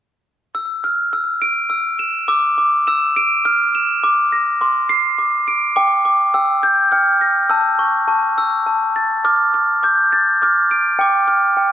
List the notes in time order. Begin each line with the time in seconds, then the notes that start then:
0.55 E6
0.84 F6
1.13 E6
1.42 D7
1.70 E6
1.99 E7
2.28 D6 E6
2.58 D6
2.87 E6 E7
3.16 D7
3.45 F6
3.75 E7
4.04 D6
4.32 A#6
4.61 C6 D6
4.89 C7
5.19 D6
5.48 D7
5.76 G5 D6
6.05 D6
6.34 G5 E6
6.63 G6
6.92 G5 F6
7.21 A#6
7.50 A5 E6
7.79 C#6
8.08 A5 C#6
8.38 E6
8.67 A5
8.96 A6
9.25 D6 F6
9.54 F6
9.83 D6 G6
10.13 A6
10.42 D6 F6
10.71 D7
10.99 G5 D6
11.28 F6
11.57 G5